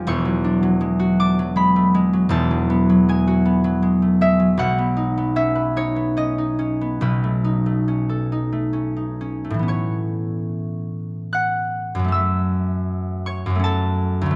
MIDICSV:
0, 0, Header, 1, 2, 480
1, 0, Start_track
1, 0, Key_signature, 3, "major"
1, 0, Tempo, 757576
1, 35, Time_signature, 3, 2, 24, 8
1, 3395, Tempo, 826446
1, 4355, Tempo, 854701
1, 5315, Tempo, 927357
1, 5795, Tempo, 834492
1, 6755, Tempo, 773196
1, 8643, End_track
2, 0, Start_track
2, 0, Title_t, "Harp"
2, 0, Program_c, 0, 46
2, 0, Note_on_c, 0, 68, 69
2, 0, Note_on_c, 0, 80, 122
2, 43, Note_on_c, 0, 28, 80
2, 46, Note_on_c, 0, 40, 94
2, 51, Note_on_c, 0, 85, 117
2, 114, Note_off_c, 0, 68, 0
2, 160, Note_on_c, 0, 54, 72
2, 281, Note_on_c, 0, 62, 74
2, 390, Note_off_c, 0, 54, 0
2, 397, Note_on_c, 0, 54, 73
2, 511, Note_on_c, 0, 56, 73
2, 631, Note_on_c, 0, 66, 79
2, 754, Note_off_c, 0, 62, 0
2, 759, Note_on_c, 0, 86, 125
2, 762, Note_on_c, 0, 62, 75
2, 873, Note_off_c, 0, 54, 0
2, 881, Note_on_c, 0, 54, 74
2, 981, Note_off_c, 0, 56, 0
2, 987, Note_on_c, 0, 56, 81
2, 993, Note_on_c, 0, 83, 109
2, 1115, Note_on_c, 0, 57, 63
2, 1225, Note_off_c, 0, 56, 0
2, 1233, Note_on_c, 0, 56, 80
2, 1314, Note_off_c, 0, 57, 0
2, 1344, Note_off_c, 0, 54, 0
2, 1352, Note_on_c, 0, 54, 67
2, 1443, Note_off_c, 0, 28, 0
2, 1451, Note_on_c, 0, 28, 81
2, 1454, Note_off_c, 0, 40, 0
2, 1459, Note_on_c, 0, 40, 98
2, 1465, Note_on_c, 0, 81, 106
2, 1490, Note_off_c, 0, 86, 0
2, 1492, Note_off_c, 0, 62, 0
2, 1581, Note_off_c, 0, 54, 0
2, 1589, Note_on_c, 0, 54, 70
2, 1710, Note_on_c, 0, 59, 78
2, 1827, Note_off_c, 0, 54, 0
2, 1834, Note_on_c, 0, 54, 70
2, 1950, Note_off_c, 0, 56, 0
2, 1950, Note_off_c, 0, 80, 0
2, 1956, Note_on_c, 0, 56, 69
2, 1960, Note_on_c, 0, 80, 96
2, 2067, Note_off_c, 0, 66, 0
2, 2074, Note_on_c, 0, 66, 72
2, 2181, Note_off_c, 0, 59, 0
2, 2189, Note_on_c, 0, 59, 73
2, 2300, Note_off_c, 0, 54, 0
2, 2307, Note_on_c, 0, 54, 70
2, 2415, Note_off_c, 0, 56, 0
2, 2423, Note_on_c, 0, 56, 66
2, 2522, Note_off_c, 0, 85, 0
2, 2548, Note_on_c, 0, 57, 57
2, 2662, Note_off_c, 0, 56, 0
2, 2668, Note_on_c, 0, 56, 76
2, 2671, Note_on_c, 0, 76, 106
2, 2749, Note_off_c, 0, 57, 0
2, 2778, Note_off_c, 0, 54, 0
2, 2785, Note_on_c, 0, 54, 56
2, 2899, Note_on_c, 0, 35, 83
2, 2906, Note_on_c, 0, 47, 83
2, 2909, Note_on_c, 0, 78, 112
2, 2914, Note_off_c, 0, 28, 0
2, 2919, Note_off_c, 0, 40, 0
2, 2920, Note_off_c, 0, 81, 0
2, 2926, Note_off_c, 0, 56, 0
2, 2927, Note_off_c, 0, 76, 0
2, 2927, Note_off_c, 0, 80, 0
2, 3024, Note_off_c, 0, 59, 0
2, 3031, Note_on_c, 0, 59, 61
2, 3147, Note_on_c, 0, 63, 71
2, 3272, Note_off_c, 0, 59, 0
2, 3279, Note_on_c, 0, 59, 67
2, 3396, Note_on_c, 0, 61, 69
2, 3398, Note_on_c, 0, 76, 96
2, 3458, Note_off_c, 0, 83, 0
2, 3509, Note_on_c, 0, 71, 59
2, 3624, Note_off_c, 0, 63, 0
2, 3631, Note_on_c, 0, 63, 60
2, 3634, Note_on_c, 0, 73, 93
2, 3739, Note_off_c, 0, 59, 0
2, 3745, Note_on_c, 0, 59, 54
2, 3859, Note_off_c, 0, 61, 0
2, 3865, Note_on_c, 0, 61, 67
2, 3869, Note_on_c, 0, 75, 90
2, 3983, Note_off_c, 0, 63, 0
2, 3990, Note_on_c, 0, 63, 56
2, 4102, Note_off_c, 0, 61, 0
2, 4109, Note_on_c, 0, 61, 64
2, 4195, Note_off_c, 0, 63, 0
2, 4233, Note_off_c, 0, 59, 0
2, 4240, Note_on_c, 0, 59, 52
2, 4346, Note_off_c, 0, 35, 0
2, 4353, Note_off_c, 0, 47, 0
2, 4353, Note_off_c, 0, 71, 0
2, 4353, Note_on_c, 0, 35, 71
2, 4358, Note_on_c, 0, 47, 73
2, 4361, Note_on_c, 0, 71, 86
2, 4375, Note_off_c, 0, 76, 0
2, 4446, Note_off_c, 0, 66, 0
2, 4482, Note_on_c, 0, 57, 59
2, 4598, Note_on_c, 0, 63, 67
2, 4713, Note_off_c, 0, 57, 0
2, 4720, Note_on_c, 0, 57, 57
2, 4835, Note_off_c, 0, 61, 0
2, 4842, Note_on_c, 0, 61, 60
2, 4963, Note_on_c, 0, 69, 57
2, 5077, Note_off_c, 0, 54, 0
2, 5083, Note_off_c, 0, 63, 0
2, 5090, Note_on_c, 0, 63, 60
2, 5187, Note_off_c, 0, 78, 0
2, 5198, Note_off_c, 0, 57, 0
2, 5205, Note_on_c, 0, 57, 60
2, 5313, Note_off_c, 0, 61, 0
2, 5320, Note_on_c, 0, 61, 59
2, 5435, Note_off_c, 0, 63, 0
2, 5442, Note_on_c, 0, 63, 51
2, 5561, Note_off_c, 0, 61, 0
2, 5567, Note_on_c, 0, 61, 57
2, 5648, Note_off_c, 0, 63, 0
2, 5684, Note_off_c, 0, 57, 0
2, 5690, Note_on_c, 0, 57, 48
2, 5721, Note_on_c, 0, 45, 75
2, 5740, Note_on_c, 0, 52, 56
2, 5760, Note_off_c, 0, 59, 0
2, 5767, Note_on_c, 0, 59, 63
2, 5778, Note_off_c, 0, 61, 0
2, 5784, Note_on_c, 0, 61, 60
2, 5807, Note_off_c, 0, 73, 0
2, 5813, Note_off_c, 0, 35, 0
2, 5814, Note_on_c, 0, 85, 95
2, 5816, Note_off_c, 0, 47, 0
2, 5816, Note_off_c, 0, 75, 0
2, 5819, Note_on_c, 0, 73, 77
2, 6528, Note_off_c, 0, 71, 0
2, 6761, Note_on_c, 0, 90, 112
2, 6772, Note_on_c, 0, 78, 85
2, 7147, Note_on_c, 0, 42, 72
2, 7175, Note_off_c, 0, 69, 0
2, 7175, Note_on_c, 0, 54, 60
2, 7199, Note_off_c, 0, 57, 0
2, 7206, Note_on_c, 0, 57, 65
2, 7222, Note_off_c, 0, 61, 0
2, 7225, Note_off_c, 0, 45, 0
2, 7230, Note_on_c, 0, 61, 65
2, 7236, Note_off_c, 0, 52, 0
2, 7252, Note_off_c, 0, 59, 0
2, 7254, Note_on_c, 0, 88, 91
2, 7267, Note_on_c, 0, 76, 72
2, 7582, Note_off_c, 0, 90, 0
2, 7955, Note_off_c, 0, 85, 0
2, 7961, Note_off_c, 0, 73, 0
2, 7962, Note_on_c, 0, 85, 109
2, 7968, Note_on_c, 0, 73, 71
2, 8078, Note_off_c, 0, 42, 0
2, 8085, Note_on_c, 0, 42, 78
2, 8103, Note_off_c, 0, 54, 0
2, 8111, Note_on_c, 0, 54, 63
2, 8135, Note_off_c, 0, 57, 0
2, 8143, Note_on_c, 0, 57, 70
2, 8162, Note_off_c, 0, 61, 0
2, 8169, Note_on_c, 0, 61, 69
2, 8196, Note_on_c, 0, 81, 106
2, 8204, Note_on_c, 0, 69, 78
2, 8554, Note_on_c, 0, 38, 81
2, 8574, Note_off_c, 0, 54, 0
2, 8581, Note_on_c, 0, 54, 72
2, 8603, Note_off_c, 0, 57, 0
2, 8611, Note_on_c, 0, 57, 72
2, 8636, Note_off_c, 0, 42, 0
2, 8643, Note_off_c, 0, 38, 0
2, 8643, Note_off_c, 0, 54, 0
2, 8643, Note_off_c, 0, 57, 0
2, 8643, Note_off_c, 0, 61, 0
2, 8643, Note_off_c, 0, 69, 0
2, 8643, Note_off_c, 0, 73, 0
2, 8643, Note_off_c, 0, 76, 0
2, 8643, Note_off_c, 0, 78, 0
2, 8643, Note_off_c, 0, 81, 0
2, 8643, Note_off_c, 0, 85, 0
2, 8643, Note_off_c, 0, 88, 0
2, 8643, End_track
0, 0, End_of_file